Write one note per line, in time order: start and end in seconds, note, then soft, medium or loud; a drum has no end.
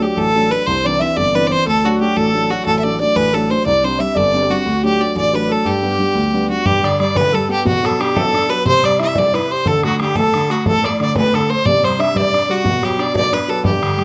0.00 0.27 F#3 soft
0.00 0.28 A3 soft
0.00 0.28 D4 medium
0.00 0.18 G4 medium
0.00 0.19 G4 medium
0.16 0.50 A1 medium
0.16 0.52 A4 medium
0.16 0.53 A4 loud
0.35 0.49 F#3 medium
0.35 0.50 A3 soft
0.35 0.50 D4 medium
0.50 0.63 F#3 soft
0.50 0.64 A3 soft
0.50 0.64 D4 soft
0.50 0.65 B4 medium
0.50 0.68 B4 loud
0.65 1.00 C2 medium
0.65 0.86 C5 medium
0.65 0.88 C5 loud
0.85 0.99 E3 soft
0.85 1.00 C4 soft
0.85 1.00 D4 medium
0.85 1.01 D5 medium
0.85 1.03 D5 loud
1.00 1.28 E3 medium
1.00 1.28 C4 soft
1.00 1.28 D4 soft
1.00 1.18 E5 loud
1.00 1.18 E5 medium
1.16 1.49 G1 medium
1.16 1.52 D5 medium
1.16 1.37 D5 loud
1.34 1.49 E3 medium
1.34 1.49 C4 soft
1.34 1.50 D4 medium
1.34 1.49 B4 medium
1.47 1.63 E3 soft
1.47 1.63 C4 soft
1.47 1.67 C5 medium
1.47 1.53 D5 medium
1.51 1.64 D4 soft
1.51 1.67 C5 loud
1.66 1.99 D2 medium
1.66 1.87 A4 medium
1.84 1.99 F#3 medium
1.84 1.99 A3 soft
1.84 2.00 D4 medium
1.84 2.16 F#4 medium
1.84 2.00 F#4 medium
2.00 2.27 F#3 soft
2.00 2.28 A3 soft
2.00 2.28 D4 medium
2.00 2.18 G4 medium
2.16 2.49 A1 medium
2.16 2.52 A4 medium
2.16 2.53 A4 medium
2.34 2.48 F#3 medium
2.34 2.49 A3 soft
2.34 2.49 D4 medium
2.50 2.77 F#3 soft
2.50 2.77 A3 soft
2.50 2.78 D4 soft
2.50 2.65 F#4 medium
2.50 2.66 F#4 medium
2.66 2.99 A1 medium
2.66 2.78 A4 loud
2.66 3.01 A4 medium
2.79 2.85 E5 soft
2.84 2.98 F#3 medium
2.84 2.99 A3 soft
2.84 3.00 D4 medium
2.84 3.00 D5 medium
3.00 3.27 F#3 soft
3.00 3.28 A3 soft
3.00 3.28 D4 medium
3.00 3.17 D5 medium
3.00 3.18 D5 medium
3.15 3.49 A1 medium
3.15 3.35 B4 medium
3.15 3.36 B4 loud
3.33 3.48 F#3 medium
3.33 3.49 A3 soft
3.33 3.49 D4 medium
3.33 3.51 A4 medium
3.33 3.52 A4 medium
3.50 3.63 F#3 soft
3.50 3.63 A3 soft
3.50 3.63 D4 soft
3.50 3.66 C5 medium
3.66 3.99 C2 medium
3.66 3.86 D5 loud
3.66 3.85 D5 medium
3.84 3.98 G3 medium
3.84 3.98 C4 soft
3.84 3.99 D4 medium
3.84 4.00 C5 medium
3.84 4.02 C5 medium
3.99 4.27 G3 medium
3.99 4.27 C4 soft
3.99 4.27 D4 soft
3.99 4.16 E5 medium
3.99 4.18 E5 medium
4.15 4.49 G1 medium
4.15 4.45 D5 medium
4.15 4.53 D5 loud
4.33 4.48 G3 medium
4.33 4.48 C4 soft
4.33 4.48 D4 medium
4.43 4.51 G4 medium
4.49 4.62 G3 soft
4.49 4.62 C4 soft
4.49 4.62 D4 soft
4.49 4.85 F#4 medium
4.49 4.84 F#4 medium
4.66 4.99 D2 medium
4.83 4.98 F#3 medium
4.83 4.98 A3 medium
4.83 4.99 D4 medium
4.83 5.00 G4 medium
4.83 5.02 G4 medium
4.99 5.27 F#3 soft
4.99 5.27 A3 soft
4.99 5.27 D4 medium
4.99 5.16 D5 medium
5.16 5.49 A1 medium
5.16 5.35 D5 medium
5.16 5.37 D5 medium
5.33 5.47 F#3 medium
5.33 5.47 A3 soft
5.33 5.48 D4 medium
5.33 5.50 B4 medium
5.33 5.53 B4 medium
5.49 5.62 F#3 soft
5.49 5.62 A3 soft
5.49 5.62 D4 soft
5.49 5.66 A4 medium
5.49 5.68 A4 medium
5.65 5.98 G2 medium
5.65 6.20 G4 medium
5.65 6.49 G4 medium
5.83 5.97 G3 medium
5.83 5.98 B3 soft
5.83 5.98 D4 medium
5.99 6.26 G3 soft
5.99 6.27 B3 soft
5.99 6.27 D4 medium
6.15 6.48 D2 medium
6.33 6.48 G3 medium
6.33 6.48 B3 soft
6.33 6.49 D4 medium
6.49 6.62 G3 soft
6.49 6.62 B3 soft
6.49 6.63 D4 soft
6.49 6.67 F#4 medium
6.49 6.68 F#4 medium
6.65 7.63 G2 medium
6.65 6.83 G4 medium
6.65 6.87 G4 loud
6.65 bodhran medium
6.83 6.99 D3 medium
6.83 6.98 D5 medium
6.83 7.00 D5 medium
6.83 bodhran medium
7.00 7.15 G3 medium
7.00 7.17 D5 medium
7.00 7.18 D5 medium
7.00 bodhran medium
7.15 7.33 D3 medium
7.15 7.34 B4 medium
7.15 7.37 B4 medium
7.15 bodhran medium
7.33 7.49 G3 medium
7.33 7.51 A4 medium
7.33 7.50 A4 medium
7.49 7.65 B3 soft
7.49 7.64 G4 medium
7.49 7.66 G4 medium
7.65 8.62 B2 medium
7.65 7.86 F#4 medium
7.65 7.87 F#4 medium
7.65 bodhran medium
7.83 7.99 F#3 medium
7.83 8.00 A4 medium
7.83 8.02 A4 medium
7.83 bodhran medium
7.99 8.15 D4 medium
7.99 8.18 G4 medium
7.99 bodhran medium
8.16 8.33 F#3 medium
8.16 8.52 A4 loud
8.16 8.50 A4 medium
8.16 bodhran medium
8.33 8.49 D4 medium
8.33 bodhran medium
8.49 8.65 F#3 soft
8.49 8.65 B4 medium
8.49 8.66 B4 medium
8.65 9.62 C3 medium
8.65 8.82 C5 medium
8.65 8.87 C5 loud
8.65 bodhran medium
8.84 8.99 G3 medium
8.84 9.01 D5 medium
8.84 9.00 D5 loud
8.84 bodhran medium
8.99 9.15 E4 medium
8.99 9.16 E5 medium
8.99 9.20 E5 medium
8.99 bodhran medium
9.15 9.33 G3 medium
9.15 9.35 D5 medium
9.15 9.37 D5 medium
9.15 bodhran medium
9.34 9.49 E4 medium
9.34 9.50 B4 medium
9.34 9.52 B4 medium
9.34 bodhran medium
9.50 9.65 G4 soft
9.50 9.67 C5 medium
9.50 9.69 C5 medium
9.65 9.99 D3 medium
9.65 9.86 A4 medium
9.65 9.84 A4 medium
9.65 bodhran medium
9.83 9.99 A3 medium
9.83 9.99 F#4 medium
9.83 bodhran medium
10.00 10.15 D3 medium
10.00 10.15 G4 medium
10.00 10.18 G4 medium
10.00 bodhran medium
10.16 10.34 A3 soft
10.16 10.53 A4 loud
10.16 10.52 A4 medium
10.16 bodhran medium
10.34 10.50 D3 medium
10.34 bodhran medium
10.50 10.65 A3 soft
10.50 10.68 F#4 medium
10.50 10.66 F#4 medium
10.50 bodhran medium
10.66 11.63 A2 medium
10.66 10.85 A4 medium
10.66 10.87 A4 loud
10.66 bodhran medium
10.84 10.99 A3 medium
10.84 11.00 D5 medium
10.84 11.01 D5 medium
10.84 bodhran medium
11.00 11.15 D3 medium
11.00 11.17 D5 medium
11.00 11.15 D5 medium
11.00 bodhran medium
11.16 11.33 A3 medium
11.16 11.36 B4 medium
11.16 11.37 B4 loud
11.16 bodhran medium
11.34 11.49 D3 medium
11.34 11.52 A4 medium
11.34 11.51 A4 medium
11.34 bodhran medium
11.50 11.65 A3 medium
11.50 11.67 C5 loud
11.50 11.66 C5 medium
11.65 12.62 C3 medium
11.65 11.86 D5 loud
11.65 11.85 D5 medium
11.65 bodhran medium
11.83 11.99 G3 medium
11.83 12.01 C5 medium
11.83 12.02 C5 medium
11.83 bodhran medium
11.99 12.14 D4 medium
11.99 12.17 E5 medium
11.99 12.18 E5 medium
11.99 bodhran medium
12.15 12.32 G3 medium
12.15 12.52 D5 medium
12.15 12.52 D5 loud
12.15 bodhran medium
12.33 12.48 D4 medium
12.33 bodhran medium
12.49 12.64 G3 medium
12.49 12.84 F#4 medium
12.49 12.87 F#4 medium
12.64 13.61 B2 medium
12.64 bodhran medium
12.83 12.98 F#3 medium
12.83 13.02 G4 medium
12.83 bodhran medium
12.98 13.14 D4 medium
12.98 13.15 D5 medium
12.98 bodhran medium
13.14 13.32 F#3 medium
13.14 13.34 D5 loud
13.14 13.35 D5 loud
13.14 bodhran medium
13.32 13.48 D4 medium
13.32 13.66 B4 medium
13.32 13.51 B4 medium
13.32 bodhran medium
13.48 13.64 F#3 soft
13.48 13.65 A4 medium
13.63 14.04 G2 medium
13.63 14.04 G4 medium
13.63 bodhran medium
13.82 13.97 D3 medium
13.82 bodhran medium
13.97 14.04 G3 medium
13.97 bodhran medium